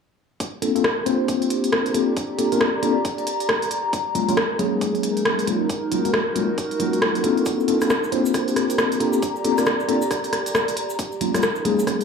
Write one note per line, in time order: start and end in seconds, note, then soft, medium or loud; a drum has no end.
0.40 3.93 G4 medium
0.40 kick loud
0.40 closed hi-hat medium
0.62 0.72 A#3 medium
0.62 0.72 C4 medium
0.62 0.72 D4 medium
0.62 0.72 F4 medium
0.62 0.72 A4 medium
0.62 closed hi-hat loud
0.76 0.84 A#3 medium
0.76 0.84 C4 medium
0.76 0.84 D4 medium
0.76 0.84 F4 medium
0.76 0.84 A4 loud
0.76 closed hi-hat medium
0.84 kick loud
0.84 cross-stick loud
1.06 1.92 A#3 medium
1.06 1.92 C4 medium
1.06 1.92 D4 medium
1.06 1.92 F4 medium
1.06 1.92 C5 loud
1.06 closed hi-hat loud
1.17 3.93 D5 medium
1.17 4.49 A#5 medium
1.28 kick loud
1.28 closed hi-hat medium
1.42 closed hi-hat soft
1.50 closed hi-hat loud
1.64 closed hi-hat medium
1.72 kick loud
1.72 cross-stick loud
1.86 closed hi-hat soft
1.94 2.13 A#3 medium
1.94 2.13 C4 medium
1.94 2.13 D4 medium
1.94 2.13 F4 medium
1.94 2.13 A4 medium
1.94 closed hi-hat loud
2.17 kick loud
2.17 closed hi-hat medium
2.39 2.49 A#3 medium
2.39 2.49 C4 medium
2.39 2.49 D4 medium
2.39 2.49 F4 medium
2.39 2.49 A4 medium
2.39 closed hi-hat loud
2.52 2.68 A#3 medium
2.52 2.68 C4 medium
2.52 2.68 D4 medium
2.52 2.68 F4 medium
2.52 2.68 A#4 medium
2.52 closed hi-hat medium
2.61 kick loud
2.61 cross-stick loud
2.83 2.96 A#3 medium
2.83 2.96 C4 medium
2.83 2.96 D4 medium
2.83 2.96 F4 medium
2.83 2.96 A4 medium
2.83 closed hi-hat loud
3.05 kick loud
3.05 closed hi-hat medium
3.18 closed hi-hat soft
3.27 closed hi-hat loud
3.40 closed hi-hat medium
3.49 kick loud
3.49 cross-stick loud
3.62 closed hi-hat soft
3.71 closed hi-hat loud
3.93 7.46 D#4 medium
3.93 kick loud
3.93 closed hi-hat medium
4.15 4.25 F#3 medium
4.15 4.25 G#3 medium
4.15 4.25 A#3 medium
4.15 4.25 C#4 medium
4.15 4.25 F4 medium
4.15 closed hi-hat loud
4.29 4.37 F#3 medium
4.29 4.37 G#3 medium
4.29 4.37 A#3 medium
4.29 4.37 C#4 medium
4.29 4.37 F4 loud
4.29 closed hi-hat medium
4.37 kick loud
4.37 cross-stick loud
4.46 8.81 A#4 medium
4.59 5.45 F#3 medium
4.59 5.45 G#3 medium
4.59 5.45 A#3 medium
4.59 5.45 C#4 medium
4.59 5.45 G#4 loud
4.59 closed hi-hat medium
4.81 kick loud
4.81 closed hi-hat medium
4.95 closed hi-hat soft
5.03 closed hi-hat loud
5.15 7.46 F#4 medium
5.15 closed hi-hat medium
5.25 kick loud
5.25 cross-stick loud
5.39 closed hi-hat soft
5.47 5.66 F#3 medium
5.47 5.66 G#3 medium
5.47 5.66 A#3 medium
5.47 5.66 C#4 medium
5.47 5.66 F4 medium
5.47 closed hi-hat loud
5.69 kick loud
5.69 closed hi-hat medium
5.92 6.02 F#3 medium
5.92 6.02 G#3 medium
5.92 6.02 A#3 medium
5.92 6.02 C#4 medium
5.92 6.02 F4 medium
5.92 closed hi-hat medium
6.05 6.21 F#3 medium
6.05 6.21 G#3 medium
6.05 6.21 A#3 medium
6.05 6.21 C#4 medium
6.05 6.21 F#4 medium
6.05 closed hi-hat medium
6.14 kick loud
6.14 cross-stick loud
6.36 6.49 F#3 medium
6.36 6.49 G#3 medium
6.36 6.49 A#3 medium
6.36 6.49 C#4 medium
6.36 6.49 F4 medium
6.36 closed hi-hat medium
6.58 kick loud
6.58 closed hi-hat medium
6.71 closed hi-hat soft
6.80 7.22 F#3 medium
6.80 7.22 G#3 medium
6.80 7.22 A#3 medium
6.80 7.22 C#4 medium
6.80 7.22 F4 medium
6.80 closed hi-hat medium
6.93 closed hi-hat medium
7.02 kick loud
7.02 cross-stick loud
7.15 closed hi-hat soft
7.24 7.66 A#3 medium
7.24 7.66 C4 medium
7.24 7.66 D4 medium
7.24 7.66 F4 medium
7.24 7.66 A4 medium
7.24 closed hi-hat loud
7.37 closed hi-hat soft
7.46 10.99 G4 medium
7.46 kick loud
7.46 closed hi-hat medium
7.46 cabasa medium
7.60 cabasa soft
7.68 7.78 A#3 medium
7.68 7.78 C4 medium
7.68 7.78 D4 medium
7.68 7.78 F4 medium
7.68 7.78 A4 medium
7.68 closed hi-hat medium
7.81 7.90 A#3 medium
7.81 7.90 C4 medium
7.81 7.90 D4 medium
7.81 7.90 F4 medium
7.81 7.90 A4 loud
7.81 cross-stick medium
7.81 closed hi-hat medium
7.81 cabasa medium
7.90 kick loud
7.90 cross-stick loud
7.90 cabasa medium
8.04 cabasa soft
8.11 8.98 A#3 medium
8.11 8.98 C4 medium
8.11 8.98 D4 medium
8.11 8.98 F4 medium
8.11 8.98 C5 loud
8.11 11.58 A#5 medium
8.11 closed hi-hat medium
8.25 10.99 D5 medium
8.25 cabasa medium
8.34 kick loud
8.34 cross-stick medium
8.34 closed hi-hat medium
8.34 cabasa medium
8.48 closed hi-hat soft
8.48 cabasa soft
8.56 cross-stick medium
8.56 closed hi-hat loud
8.70 closed hi-hat medium
8.70 cabasa medium
8.78 kick loud
8.78 cross-stick loud
8.78 cabasa medium
8.92 closed hi-hat soft
8.92 cabasa soft
9.00 9.18 A#3 medium
9.00 9.18 C4 medium
9.00 9.18 D4 medium
9.00 9.19 F4 medium
9.00 9.19 A4 medium
9.00 closed hi-hat loud
9.13 cabasa medium
9.22 kick loud
9.22 closed hi-hat medium
9.22 cabasa medium
9.36 cabasa soft
9.44 9.55 A#3 medium
9.44 9.55 C4 medium
9.44 9.55 D4 medium
9.44 9.55 F4 medium
9.44 9.55 A4 medium
9.44 closed hi-hat loud
9.58 9.74 A#3 medium
9.58 9.74 C4 medium
9.58 9.74 D4 medium
9.58 9.74 F4 medium
9.58 9.74 A#4 medium
9.58 cross-stick medium
9.58 closed hi-hat medium
9.58 cabasa medium
9.66 kick loud
9.66 cross-stick loud
9.66 cabasa medium
9.80 cabasa soft
9.89 10.02 A#3 medium
9.89 10.02 C4 medium
9.89 10.02 D4 medium
9.89 10.02 F4 medium
9.89 10.02 A4 medium
9.89 closed hi-hat medium
10.02 cabasa medium
10.11 kick loud
10.11 cross-stick medium
10.11 closed hi-hat medium
10.11 cabasa medium
10.24 closed hi-hat soft
10.24 cabasa soft
10.33 cross-stick medium
10.33 closed hi-hat loud
10.46 closed hi-hat medium
10.46 cabasa medium
10.55 kick loud
10.55 cross-stick loud
10.55 cabasa medium
10.68 closed hi-hat medium
10.68 cabasa soft
10.77 closed hi-hat loud
10.90 cabasa medium
10.99 12.04 D#4 medium
10.99 kick loud
10.99 closed hi-hat medium
10.99 cabasa medium
11.12 cabasa soft
11.21 11.31 F#3 medium
11.21 11.31 G#3 medium
11.21 11.31 A#3 medium
11.21 11.31 C#4 medium
11.21 11.31 F4 medium
11.21 closed hi-hat loud
11.34 11.43 F#3 medium
11.34 11.43 G#3 medium
11.34 11.43 A#3 medium
11.34 11.43 C#4 medium
11.34 11.43 F4 loud
11.34 cross-stick medium
11.34 closed hi-hat medium
11.34 cabasa medium
11.43 kick loud
11.43 cross-stick loud
11.43 cabasa medium
11.56 cabasa soft
11.65 12.04 F#3 medium
11.65 12.04 G#3 medium
11.65 12.04 A#3 medium
11.65 12.04 C#4 medium
11.65 12.04 G#4 loud
11.65 closed hi-hat loud
11.79 cabasa medium
11.87 kick loud
11.87 cross-stick medium
11.87 closed hi-hat medium
11.87 cabasa medium
12.01 closed hi-hat soft
12.01 cabasa soft